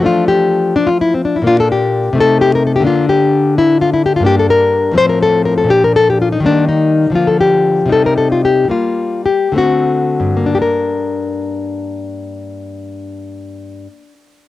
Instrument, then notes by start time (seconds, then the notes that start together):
nylon-string guitar
0.00 F3 A3
0.04 D4 F4
0.28 G4
0.76 D4
0.87 F4
1.01 E4
1.14 C4
1.25 D4
1.36 E4
1.42 A#2 A#3
1.47 D4 F4
1.60 A4
1.72 G4
2.13 C3 A3
2.18 D#4 A4
2.41 G4
2.55 A#4
2.67 A4
2.76 G4
2.80 D3 A#3
2.85 D4 F4
3.09 G4
3.58 E4
3.81 F4
3.93 E4
4.06 G4
4.16 G2 F4
4.23 A#3 D4 G4
4.39 A4
4.50 A#4
4.92 A2 F3 C4
4.98 C5
5.09 A#4
5.22 A4
5.45 A#4
5.58 A4
5.64 A#2 F3
5.69 D4 G4
5.84 A#4
5.96 A4
6.10 G4
6.22 F4
6.32 D#4
6.40 D#3 G3
6.44 A#3 D4
6.68 D#4
7.10 D3 F3
7.15 A#3 F4
7.27 A4
7.41 G4
7.86 C3 G3 D#4
7.92 A4
8.06 A#4
8.18 A4
8.32 F4
8.45 G4
8.65 D3 G3
8.70 A#3 F4
9.26 G4
9.52 D3 A3 C4
9.58 F#4
10.20 G2
10.37 A#3
10.46 D4
10.55 G4
10.62 A#4